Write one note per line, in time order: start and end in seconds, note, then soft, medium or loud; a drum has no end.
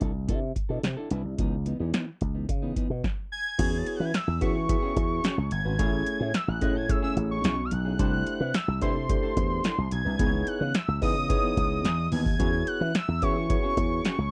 0.00 0.30 C2 medium
0.00 0.13 D4 medium
0.00 0.13 E4 medium
0.00 0.13 A4 medium
0.00 kick medium
0.00 closed hi-hat medium
0.14 muted clean electric guitar stroke soft
0.28 0.51 C3 loud
0.28 0.44 D4 medium
0.28 0.42 E4 medium
0.28 0.41 A4 loud
0.28 kick loud
0.28 closed hi-hat medium
0.42 muted clean electric guitar stroke soft
0.55 muted clean electric guitar stroke soft
0.55 kick medium
0.55 closed hi-hat medium
0.69 0.81 B2 medium
0.69 0.82 D4 medium
0.69 0.82 E4 medium
0.69 0.82 A4 medium
0.83 0.95 C3 medium
0.83 muted clean electric guitar stroke soft
0.83 snare loud
0.83 closed hi-hat medium
0.97 1.10 D4 medium
0.97 1.10 E4 medium
0.97 1.12 A4 medium
1.11 1.22 C2 medium
1.11 1.23 D4 medium
1.11 1.23 E4 medium
1.11 1.24 B4 medium
1.11 closed hi-hat medium
1.25 1.36 C2 medium
1.38 1.72 C#2 loud
1.38 1.54 E3 medium
1.38 1.54 B3 medium
1.38 1.55 D#4 medium
1.38 kick loud
1.38 closed hi-hat medium
1.66 1.78 E3 soft
1.66 1.78 B3 medium
1.66 1.78 D#4 medium
1.66 closed hi-hat medium
1.79 1.91 E2 medium
1.79 1.92 E3 medium
1.79 1.92 B3 medium
1.79 1.92 D#4 medium
1.93 2.09 E3 medium
1.93 2.07 B3 medium
1.93 2.06 D#4 medium
1.93 snare loud
1.93 closed hi-hat medium
2.07 muted clean electric guitar stroke soft
2.21 2.44 C#2 medium
2.21 muted clean electric guitar stroke soft
2.21 kick medium
2.21 closed hi-hat medium
2.35 2.47 E3 soft
2.35 2.47 B3 soft
2.35 2.47 D#4 medium
2.49 2.71 C#3 loud
2.49 muted clean electric guitar stroke soft
2.49 kick loud
2.49 closed hi-hat medium
2.62 2.75 E3 medium
2.62 2.76 B3 medium
2.62 2.76 D#4 medium
2.76 2.88 E3 medium
2.76 2.89 B3 medium
2.76 2.89 D#4 medium
2.76 kick medium
2.76 closed hi-hat medium
2.90 3.01 B2 medium
2.90 muted clean electric guitar stroke soft
3.04 kick loud
3.04 snare medium
3.32 3.79 G#6 medium
3.58 3.81 E2 loud
3.58 3.98 B3 medium
3.58 3.74 C#4 medium
3.58 3.99 E4 medium
3.58 3.99 F#4 medium
3.58 3.72 F#4 medium
3.58 3.99 G#4 medium
3.58 3.71 G#4 loud
3.58 3.99 C#5 medium
3.58 kick loud
3.58 closed hi-hat medium
3.58 crash loud
3.78 3.88 A6 medium
3.86 3.97 G#6 medium
3.86 muted clean electric guitar stroke medium
3.86 closed hi-hat medium
3.96 4.06 F#6 medium
4.00 4.11 E3 loud
4.00 4.13 C#4 medium
4.00 4.13 F#4 medium
4.00 4.12 B4 medium
4.05 4.16 G#6 medium
4.14 4.41 E6 loud
4.14 snare loud
4.14 closed hi-hat loud
4.27 4.39 E2 medium
4.27 muted clean electric guitar stroke medium
4.41 4.75 E3 loud
4.41 4.54 B3 medium
4.41 4.55 C#4 medium
4.41 4.54 E4 medium
4.41 4.55 F#4 medium
4.41 4.55 G#4 medium
4.41 4.55 B4 medium
4.41 4.55 E5 medium
4.41 5.48 C#6 medium
4.41 kick loud
4.41 closed hi-hat medium
4.55 4.68 C#4 soft
4.55 4.68 F#4 medium
4.55 4.67 G#4 medium
4.68 5.22 B3 medium
4.68 5.22 E4 medium
4.68 5.22 F#4 medium
4.68 5.22 G#4 medium
4.68 5.22 E5 medium
4.68 muted clean electric guitar stroke medium
4.68 kick loud
4.68 closed hi-hat loud
4.82 4.95 C#4 medium
4.82 4.96 F#4 medium
4.82 4.96 G#4 loud
4.96 5.19 E2 medium
4.96 muted clean electric guitar stroke soft
4.96 kick loud
4.96 closed hi-hat medium
5.10 muted clean electric guitar stroke soft
5.24 5.39 C#4 medium
5.24 5.37 F#4 medium
5.24 5.36 G#4 medium
5.24 snare loud
5.24 closed hi-hat medium
5.38 5.49 C#2 loud
5.38 muted clean electric guitar stroke soft
5.51 5.63 G1 loud
5.51 6.36 G#6 loud
5.51 muted clean electric guitar stroke medium
5.51 closed hi-hat loud
5.65 5.77 G#1 loud
5.65 5.77 C#4 soft
5.65 5.78 F#4 medium
5.65 5.77 B4 medium
5.79 6.02 A1 loud
5.79 6.19 A3 medium
5.79 5.94 C#4 medium
5.79 6.19 C#4 medium
5.79 6.19 E4 medium
5.79 5.92 E4 medium
5.79 6.19 G#4 medium
5.79 5.91 G#4 loud
5.79 6.19 C#5 medium
5.79 kick loud
5.79 closed hi-hat medium
5.92 muted clean electric guitar stroke medium
6.06 muted clean electric guitar stroke soft
6.06 closed hi-hat medium
6.20 6.32 A2 loud
6.20 6.32 C#4 medium
6.20 6.33 E4 medium
6.20 6.32 G#4 medium
6.34 6.50 E6 loud
6.34 muted clean electric guitar stroke soft
6.34 snare loud
6.34 closed hi-hat medium
6.47 6.59 A1 loud
6.47 6.78 F#6 medium
6.47 muted clean electric guitar stroke soft
6.61 6.95 A2 loud
6.61 6.75 A3 medium
6.61 6.75 C#4 medium
6.61 6.75 E4 medium
6.61 6.74 E4 medium
6.61 6.75 G#4 medium
6.61 6.75 G#4 loud
6.61 6.75 D#5 medium
6.61 kick loud
6.61 closed hi-hat medium
6.75 6.88 C#4 medium
6.75 6.88 E4 medium
6.75 6.87 A4 medium
6.75 6.91 G#6 loud
6.89 7.42 A3 medium
6.89 7.42 C#4 medium
6.89 7.42 E4 medium
6.89 7.42 G#4 medium
6.89 7.42 C#5 medium
6.89 7.03 E6 medium
6.89 muted clean electric guitar stroke soft
6.89 kick loud
6.89 closed hi-hat loud
7.02 7.15 C#4 medium
7.02 7.16 E4 medium
7.02 7.16 G#4 loud
7.02 7.16 E6 loud
7.17 7.39 A1 medium
7.17 muted clean electric guitar stroke soft
7.17 closed hi-hat medium
7.30 7.67 C#6 medium
7.30 muted clean electric guitar stroke soft
7.44 7.67 B1 medium
7.44 7.59 C#4 medium
7.44 7.58 E4 loud
7.44 7.57 G#4 medium
7.44 snare loud
7.44 closed hi-hat loud
7.58 muted clean electric guitar stroke medium
7.65 7.74 F6 medium
7.71 7.94 B1 loud
7.71 8.56 F#6 loud
7.71 muted clean electric guitar stroke soft
7.71 closed hi-hat loud
7.85 7.98 C#4 medium
7.85 7.98 E4 medium
7.85 7.97 G#4 medium
7.99 8.22 C2 loud
7.99 8.39 A3 medium
7.99 8.14 D4 medium
7.99 8.39 D4 medium
7.99 8.39 E4 medium
7.99 8.13 E4 medium
7.99 8.39 G4 medium
7.99 8.12 A4 medium
7.99 8.39 C5 medium
7.99 kick loud
7.99 closed hi-hat medium
8.13 muted clean electric guitar stroke soft
8.26 muted clean electric guitar stroke medium
8.26 closed hi-hat medium
8.40 8.52 C3 loud
8.40 8.53 D4 medium
8.40 8.53 E4 medium
8.40 8.52 B4 medium
8.54 8.82 E6 loud
8.54 muted clean electric guitar stroke soft
8.54 snare loud
8.54 closed hi-hat loud
8.68 8.79 C2 loud
8.68 muted clean electric guitar stroke soft
8.81 9.16 C3 loud
8.81 8.95 A3 medium
8.81 8.95 D4 medium
8.81 8.95 E4 medium
8.81 8.95 E4 loud
8.81 8.95 G4 medium
8.81 8.95 B4 loud
8.81 8.95 C5 medium
8.81 9.88 C6 loud
8.81 kick medium
8.81 closed hi-hat medium
8.95 9.08 D4 soft
8.95 9.08 E4 medium
8.95 9.07 A4 medium
9.09 9.62 A3 medium
9.09 9.62 D4 medium
9.09 9.62 E4 medium
9.09 9.63 G4 medium
9.09 9.63 C5 medium
9.09 muted clean electric guitar stroke soft
9.09 kick loud
9.09 closed hi-hat medium
9.23 9.35 D4 medium
9.23 9.36 E4 medium
9.23 9.36 A4 medium
9.37 9.59 E2 medium
9.37 kick loud
9.37 closed hi-hat medium
9.50 muted clean electric guitar stroke soft
9.64 9.80 D4 medium
9.64 9.78 E4 medium
9.64 9.77 A4 medium
9.64 snare loud
9.64 closed hi-hat loud
9.78 9.89 C2 medium
9.78 muted clean electric guitar stroke soft
9.91 10.03 B1 loud
9.91 10.49 G#6 loud
9.91 muted clean electric guitar stroke soft
9.91 closed hi-hat medium
10.05 10.17 C2 medium
10.05 10.18 D4 medium
10.05 10.18 E4 medium
10.05 10.17 B4 medium
10.19 10.42 C#2 loud
10.19 10.35 E3 medium
10.19 10.59 B3 medium
10.19 10.33 B3 medium
10.19 10.59 D#4 medium
10.19 10.32 D#4 medium
10.19 10.59 E4 medium
10.19 10.59 G#4 medium
10.19 10.26 B4 medium
10.19 kick loud
10.19 closed hi-hat loud
10.26 10.63 C#5 medium
10.33 muted clean electric guitar stroke soft
10.47 10.76 F#6 loud
10.47 muted clean electric guitar stroke soft
10.47 closed hi-hat medium
10.60 10.72 C#3 loud
10.60 10.73 E3 medium
10.60 10.73 B3 medium
10.60 10.73 D#4 medium
10.74 11.02 E6 loud
10.74 snare loud
10.74 closed hi-hat loud
10.88 10.99 C#2 loud
10.88 muted clean electric guitar stroke soft
11.01 11.36 C#3 loud
11.01 11.16 E3 medium
11.01 11.15 B3 medium
11.01 11.15 B3 loud
11.01 11.15 D#4 medium
11.01 11.15 E4 medium
11.01 11.15 G#4 medium
11.01 11.15 D#5 medium
11.01 12.08 D#6 loud
11.01 kick loud
11.01 open hi-hat medium
11.17 11.28 E3 soft
11.29 11.82 B3 medium
11.29 11.82 D#4 medium
11.29 11.83 E4 medium
11.29 11.83 G#4 medium
11.29 11.83 C#5 medium
11.29 kick loud
11.29 closed hi-hat medium
11.43 11.56 E3 medium
11.43 11.56 B3 medium
11.43 11.56 D#4 medium
11.57 11.80 C#2 medium
11.57 kick loud
11.57 closed hi-hat medium
11.71 muted clean electric guitar stroke soft
11.84 12.07 E2 medium
11.84 muted clean electric guitar stroke soft
11.84 snare loud
11.84 closed hi-hat loud
11.98 muted clean electric guitar stroke soft
12.11 12.35 D#2 loud
12.11 12.27 E3 medium
12.11 12.25 B3 loud
12.11 12.24 D#4 medium
12.11 12.69 G#6 loud
12.11 open hi-hat loud
12.25 muted clean electric guitar stroke soft
12.25 kick loud
12.39 12.62 E2 loud
12.39 12.79 B3 medium
12.39 12.55 C#4 medium
12.39 12.79 E4 medium
12.39 12.79 F#4 medium
12.39 12.53 F#4 medium
12.39 12.80 G#4 medium
12.39 12.52 G#4 medium
12.39 12.80 C#5 medium
12.39 kick loud
12.39 closed hi-hat medium
12.53 muted clean electric guitar stroke soft
12.67 12.97 F#6 loud
12.67 muted clean electric guitar stroke soft
12.67 closed hi-hat medium
12.80 12.92 E3 loud
12.80 12.93 C#4 medium
12.80 12.93 F#4 medium
12.80 12.93 B4 medium
12.94 13.24 E6 loud
12.94 muted clean electric guitar stroke soft
12.94 snare loud
12.94 closed hi-hat medium
13.08 13.20 E2 loud
13.08 muted clean electric guitar stroke medium
13.22 13.56 E3 loud
13.22 13.35 B3 medium
13.22 13.36 C#4 medium
13.22 13.35 E4 medium
13.22 13.35 F#4 medium
13.22 13.36 G#4 medium
13.22 13.35 B4 medium
13.22 13.36 C#5 medium
13.22 14.31 C#6 loud
13.22 kick medium
13.22 closed hi-hat medium
13.36 13.48 C#4 medium
13.36 13.48 F#4 medium
13.36 13.48 G#4 medium
13.49 14.03 B3 medium
13.49 14.03 E4 medium
13.49 14.03 F#4 medium
13.49 14.03 G#4 medium
13.49 14.03 C#5 medium
13.49 muted clean electric guitar stroke soft
13.49 kick loud
13.49 closed hi-hat medium
13.63 13.76 C#4 medium
13.63 13.76 F#4 medium
13.63 13.77 G#4 loud
13.77 14.00 E2 medium
13.77 muted clean electric guitar stroke soft
13.77 kick medium
13.77 closed hi-hat medium
13.91 muted clean electric guitar stroke medium
14.04 14.20 C#4 medium
14.04 14.18 F#4 medium
14.04 14.17 G#4 loud
14.04 snare loud
14.04 closed hi-hat medium
14.18 14.30 C#2 loud
14.18 muted clean electric guitar stroke soft